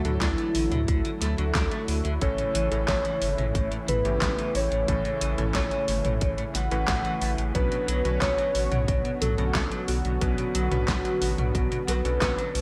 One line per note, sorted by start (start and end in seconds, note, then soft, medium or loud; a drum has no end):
0.00 2.18 D3 medium
0.00 2.18 F#3 medium
0.00 7.51 A3 medium
0.00 7.51 E4 medium
0.00 0.22 F#4 loud
0.00 0.23 F#4 loud
0.05 0.19 D2 medium
0.05 0.10 D3 loud
0.05 1.18 F#3 medium
0.05 1.18 A3 medium
0.05 1.18 D4 medium
0.05 1.18 A4 medium
0.05 closed hi-hat soft
0.05 mid tom medium
0.21 0.35 D2 loud
0.21 0.30 D4 loud
0.21 1.08 E4 medium
0.21 1.08 E4 loud
0.21 kick loud
0.21 snare loud
0.21 clap medium
0.21 closed hi-hat medium
0.38 0.51 A3 medium
0.38 closed hi-hat soft
0.55 0.69 A1 loud
0.55 0.63 D3 medium
0.55 open hi-hat medium
0.72 0.85 D2 medium
0.72 0.80 D3 loud
0.72 closed hi-hat soft
0.72 mid tom medium
0.88 1.02 D2 loud
0.88 1.01 D3 medium
0.88 kick loud
0.88 closed hi-hat medium
1.05 1.10 D3 loud
1.05 closed hi-hat soft
1.21 1.35 D2 medium
1.21 1.34 A3 loud
1.21 2.08 A4 loud
1.21 2.09 A4 medium
1.21 snare soft
1.21 closed hi-hat loud
1.38 1.52 D2 medium
1.38 1.43 D3 loud
1.38 2.18 F#3 medium
1.38 2.18 A3 medium
1.38 2.18 D4 medium
1.38 2.18 F#4 medium
1.38 closed hi-hat soft
1.55 1.69 D2 loud
1.55 1.63 D4 medium
1.55 kick loud
1.55 snare loud
1.55 clap medium
1.55 closed hi-hat medium
1.71 1.84 A3 medium
1.71 closed hi-hat soft
1.88 2.02 D2 medium
1.88 1.97 D3 medium
1.88 open hi-hat medium
2.05 2.19 D2 medium
2.05 2.13 D3 loud
2.05 closed hi-hat soft
2.21 2.35 A1 loud
2.21 2.34 A2 medium
2.21 2.68 A2 medium
2.21 7.51 C#3 medium
2.21 2.68 E3 medium
2.21 7.51 E3 medium
2.21 2.68 A3 medium
2.21 2.68 C#4 medium
2.21 2.68 A4 medium
2.21 2.81 C#5 medium
2.21 2.81 C#5 loud
2.21 kick loud
2.21 closed hi-hat medium
2.38 2.43 A2 loud
2.38 closed hi-hat soft
2.55 2.69 A1 loud
2.55 2.67 E3 loud
2.55 closed hi-hat medium
2.72 2.85 A1 medium
2.72 2.77 A2 loud
2.72 3.84 A2 medium
2.72 3.84 E3 medium
2.72 3.84 A3 medium
2.72 3.84 C#4 medium
2.72 3.84 A4 medium
2.72 closed hi-hat soft
2.88 3.02 A1 loud
2.88 2.97 A3 loud
2.88 3.75 C#5 loud
2.88 kick loud
2.88 snare loud
2.88 clap medium
2.88 closed hi-hat medium
3.05 3.17 E3 medium
3.05 closed hi-hat soft
3.21 3.35 G1 loud
3.21 3.30 A2 medium
3.21 open hi-hat medium
3.38 3.52 A1 medium
3.38 3.47 A2 loud
3.38 closed hi-hat soft
3.38 mid tom medium
3.55 3.69 A1 loud
3.55 3.67 A2 medium
3.55 kick loud
3.55 closed hi-hat medium
3.71 3.76 A2 loud
3.71 closed hi-hat soft
3.88 4.02 A1 medium
3.88 4.01 E3 loud
3.88 4.55 B4 medium
3.88 4.56 B4 loud
3.88 closed hi-hat medium
3.88 mid tom medium
4.05 4.19 A1 medium
4.05 4.10 A2 medium
4.05 4.84 A2 medium
4.05 4.84 E3 medium
4.05 4.84 A3 medium
4.05 4.84 C#4 medium
4.05 4.84 G4 medium
4.05 closed hi-hat soft
4.21 4.35 A1 loud
4.21 4.30 A3 loud
4.21 kick loud
4.21 snare loud
4.21 clap loud
4.21 closed hi-hat medium
4.38 4.51 E3 medium
4.38 closed hi-hat soft
4.55 4.69 A1 loud
4.55 4.63 A2 medium
4.55 5.42 C#5 loud
4.55 open hi-hat medium
4.71 4.85 A1 medium
4.71 4.80 A2 loud
4.71 closed hi-hat soft
4.88 5.02 A1 loud
4.88 5.01 A2 medium
4.88 5.34 A2 medium
4.88 5.34 E3 medium
4.88 5.34 A3 medium
4.88 5.34 C#4 medium
4.88 5.34 A4 loud
4.88 kick loud
4.88 closed hi-hat medium
5.05 5.10 A2 loud
5.05 closed hi-hat soft
5.21 5.35 A1 loud
5.21 5.34 E3 loud
5.21 closed hi-hat medium
5.38 5.52 A1 medium
5.38 6.51 A2 medium
5.38 5.44 A2 loud
5.38 6.51 E3 medium
5.38 6.51 A3 medium
5.38 6.51 C#4 medium
5.38 6.51 A4 medium
5.38 closed hi-hat soft
5.38 mid tom medium
5.55 5.69 A1 loud
5.55 5.63 A3 loud
5.55 6.42 C#5 loud
5.55 kick loud
5.55 snare loud
5.55 clap medium
5.55 closed hi-hat medium
5.71 5.84 E3 medium
5.71 closed hi-hat soft
5.88 6.02 G1 medium
5.88 5.97 A2 medium
5.88 open hi-hat medium
6.05 6.19 A1 medium
6.05 6.13 A2 loud
6.05 closed hi-hat soft
6.05 mid tom loud
6.21 6.35 A1 loud
6.21 6.34 A2 medium
6.21 kick loud
6.21 closed hi-hat medium
6.38 6.43 A2 loud
6.38 closed hi-hat soft
6.55 6.69 A1 medium
6.55 6.67 E3 medium
6.55 7.42 F#5 medium
6.55 7.42 F#5 loud
6.55 snare soft
6.55 closed hi-hat medium
6.71 6.85 A1 medium
6.71 6.77 A2 loud
6.71 7.51 A2 medium
6.71 7.51 E3 medium
6.71 7.51 A3 medium
6.71 7.51 C#4 medium
6.71 7.51 B4 medium
6.71 closed hi-hat soft
6.88 7.02 A1 medium
6.88 7.01 A2 medium
6.88 kick loud
6.88 snare loud
6.88 clap medium
6.88 closed hi-hat medium
7.05 7.13 E3 loud
7.05 closed hi-hat soft
7.22 7.35 A1 medium
7.22 7.30 A3 medium
7.22 open hi-hat medium
7.38 7.52 A1 medium
7.38 7.43 A2 medium
7.38 closed hi-hat soft
7.55 7.69 B1 loud
7.55 8.01 B2 medium
7.55 7.68 B2 medium
7.55 12.61 D3 medium
7.55 8.01 F#3 medium
7.55 12.61 B3 medium
7.55 8.01 C#4 medium
7.55 8.01 D4 medium
7.55 12.61 F#4 medium
7.55 8.14 B4 loud
7.55 8.01 B4 medium
7.55 8.14 B4 medium
7.55 10.19 C#5 medium
7.55 kick loud
7.55 closed hi-hat medium
7.72 7.77 B2 loud
7.72 closed hi-hat soft
7.88 8.02 B1 loud
7.88 8.01 F#3 loud
7.88 closed hi-hat medium
8.05 8.19 B1 medium
8.05 8.10 B2 loud
8.05 9.18 B2 medium
8.05 9.18 F#3 medium
8.05 9.18 C#4 medium
8.05 9.18 D4 medium
8.05 9.18 B4 medium
8.05 closed hi-hat soft
8.21 8.35 B1 loud
8.21 8.30 B3 loud
8.21 9.08 C#5 loud
8.21 9.08 C#5 medium
8.21 kick loud
8.21 snare loud
8.21 clap medium
8.21 closed hi-hat medium
8.38 8.51 F#3 medium
8.38 closed hi-hat soft
8.55 8.69 A1 medium
8.55 8.63 B2 medium
8.55 open hi-hat medium
8.72 8.85 B1 medium
8.72 8.80 B2 loud
8.72 closed hi-hat soft
8.72 mid tom loud
8.88 9.02 B1 loud
8.88 9.01 B2 medium
8.88 kick loud
8.88 closed hi-hat medium
9.05 9.10 B2 loud
9.05 closed hi-hat soft
9.21 9.35 B1 medium
9.21 9.34 F#3 loud
9.21 9.81 A4 medium
9.21 closed hi-hat medium
9.21 mid tom loud
9.38 9.52 B1 medium
9.38 10.18 B2 medium
9.38 9.43 B2 loud
9.38 10.18 F#3 medium
9.38 10.18 C#4 medium
9.38 10.18 D4 medium
9.38 10.18 A4 medium
9.38 closed hi-hat soft
9.55 9.69 B1 loud
9.55 9.63 B3 loud
9.55 kick loud
9.55 snare loud
9.55 clap medium
9.55 closed hi-hat medium
9.72 9.84 F#3 medium
9.72 closed hi-hat soft
9.88 10.02 B1 loud
9.88 9.97 B2 medium
9.88 10.75 F#4 loud
9.88 open hi-hat medium
10.05 10.19 B1 medium
10.05 10.13 B2 loud
10.05 closed hi-hat soft
10.21 10.35 B1 loud
10.21 10.68 B2 medium
10.21 10.34 B2 medium
10.21 10.68 F#3 medium
10.21 10.68 C#4 medium
10.21 10.68 D4 medium
10.21 10.68 B4 medium
10.21 kick loud
10.21 closed hi-hat medium
10.38 10.43 B2 loud
10.38 closed hi-hat soft
10.55 10.69 B1 medium
10.55 10.67 F#3 loud
10.55 closed hi-hat medium
10.71 10.85 B1 medium
10.71 11.84 B2 medium
10.71 10.77 B2 loud
10.71 11.84 F#3 medium
10.71 11.84 C#4 medium
10.71 11.84 D4 medium
10.71 11.84 B4 medium
10.71 closed hi-hat soft
10.71 mid tom medium
10.88 11.02 B1 loud
10.88 10.97 B3 loud
10.88 11.90 F#4 loud
10.88 11.88 F#4 medium
10.88 kick loud
10.88 snare loud
10.88 clap medium
10.88 closed hi-hat medium
11.05 11.17 F#3 medium
11.05 closed hi-hat soft
11.22 11.35 A1 medium
11.22 11.30 B2 medium
11.22 open hi-hat medium
11.38 11.52 B1 medium
11.38 11.47 B2 loud
11.38 closed hi-hat soft
11.38 mid tom loud
11.55 11.69 B1 loud
11.55 11.67 B2 medium
11.55 kick loud
11.55 closed hi-hat medium
11.72 11.77 B2 loud
11.72 closed hi-hat soft
11.88 12.02 B1 medium
11.88 12.01 F#3 loud
11.88 12.61 B4 loud
11.88 12.61 B4 medium
11.88 snare soft
11.88 closed hi-hat medium
12.05 12.19 B1 medium
12.05 12.10 B2 loud
12.05 12.61 B2 medium
12.05 12.61 F#3 medium
12.05 12.61 C#4 medium
12.05 12.61 D4 medium
12.05 12.61 A4 medium
12.05 closed hi-hat soft
12.22 12.35 B1 loud
12.22 12.30 B3 loud
12.22 kick loud
12.22 snare loud
12.22 clap medium
12.22 closed hi-hat medium
12.38 12.51 F#3 medium
12.38 closed hi-hat soft
12.55 12.61 B1 loud
12.55 12.61 B2 medium
12.55 open hi-hat medium